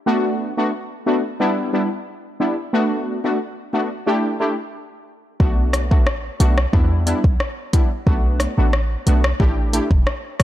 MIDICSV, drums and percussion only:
0, 0, Header, 1, 2, 480
1, 0, Start_track
1, 0, Key_signature, 2, "minor"
1, 0, Tempo, 666667
1, 49, Time_signature, 4, 2, 24, 8
1, 7510, End_track
2, 0, Start_track
2, 0, Title_t, "Drums"
2, 3888, Note_on_c, 9, 36, 112
2, 3960, Note_off_c, 9, 36, 0
2, 4128, Note_on_c, 9, 37, 86
2, 4130, Note_on_c, 9, 42, 71
2, 4200, Note_off_c, 9, 37, 0
2, 4202, Note_off_c, 9, 42, 0
2, 4257, Note_on_c, 9, 36, 91
2, 4329, Note_off_c, 9, 36, 0
2, 4368, Note_on_c, 9, 37, 87
2, 4440, Note_off_c, 9, 37, 0
2, 4609, Note_on_c, 9, 42, 73
2, 4681, Note_off_c, 9, 42, 0
2, 4735, Note_on_c, 9, 37, 95
2, 4807, Note_off_c, 9, 37, 0
2, 4848, Note_on_c, 9, 36, 91
2, 4920, Note_off_c, 9, 36, 0
2, 5089, Note_on_c, 9, 42, 77
2, 5161, Note_off_c, 9, 42, 0
2, 5214, Note_on_c, 9, 36, 88
2, 5286, Note_off_c, 9, 36, 0
2, 5329, Note_on_c, 9, 37, 84
2, 5401, Note_off_c, 9, 37, 0
2, 5568, Note_on_c, 9, 42, 66
2, 5569, Note_on_c, 9, 36, 92
2, 5640, Note_off_c, 9, 42, 0
2, 5641, Note_off_c, 9, 36, 0
2, 5808, Note_on_c, 9, 36, 104
2, 5880, Note_off_c, 9, 36, 0
2, 6046, Note_on_c, 9, 37, 89
2, 6049, Note_on_c, 9, 42, 74
2, 6118, Note_off_c, 9, 37, 0
2, 6121, Note_off_c, 9, 42, 0
2, 6287, Note_on_c, 9, 37, 88
2, 6359, Note_off_c, 9, 37, 0
2, 6528, Note_on_c, 9, 42, 74
2, 6600, Note_off_c, 9, 42, 0
2, 6654, Note_on_c, 9, 37, 96
2, 6726, Note_off_c, 9, 37, 0
2, 6767, Note_on_c, 9, 36, 87
2, 6839, Note_off_c, 9, 36, 0
2, 7009, Note_on_c, 9, 42, 77
2, 7081, Note_off_c, 9, 42, 0
2, 7133, Note_on_c, 9, 36, 92
2, 7205, Note_off_c, 9, 36, 0
2, 7248, Note_on_c, 9, 37, 86
2, 7320, Note_off_c, 9, 37, 0
2, 7485, Note_on_c, 9, 37, 92
2, 7487, Note_on_c, 9, 42, 67
2, 7488, Note_on_c, 9, 36, 96
2, 7510, Note_off_c, 9, 36, 0
2, 7510, Note_off_c, 9, 37, 0
2, 7510, Note_off_c, 9, 42, 0
2, 7510, End_track
0, 0, End_of_file